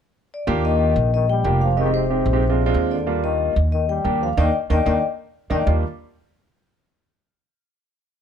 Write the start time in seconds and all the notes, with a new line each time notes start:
0.34 D5
0.47 D#2 A#3 D4 F4 G4
0.65 D#3 D#5
0.96 A#1
1.14 D#3 D#5
1.30 G3 G5
1.44 F1 A#3 D4 F4 G4
1.61 F3 F5
1.77 D#3 G#3 C4 D#4 G4 D#5
1.85 G#3 C4 D#4 G4
1.94 C3 C5
2.10 G#3 C4 D#4 G4
2.26 A#1
2.33 G#3 C4 D#4 G4
2.49 G#3 C4 D4 F4
2.66 G#3 C4 D4 F4
2.74 D#2
2.91 D3 D5
3.06 G3 A#3 D4 F4
3.24 D#3 D#5
3.56 D#2
3.72 D#3 D#5
3.88 G3 G5
4.04 D#2 G3 A#3 D4 G4
4.22 F3 F5
4.37 D#2 D#3 A#3 D4 D#4 D5 D#5 G5
4.70 D#2 D#3 A#3 D4 D#4 D5 D#5 G5
4.86 D#2 D#3 A#3 D4 D#4 D5 D#5 G5
5.50 D#2 D#3 A#3 D4 D#4 D5 D#5 G5
5.66 D#2 G3 A#3 D4 F4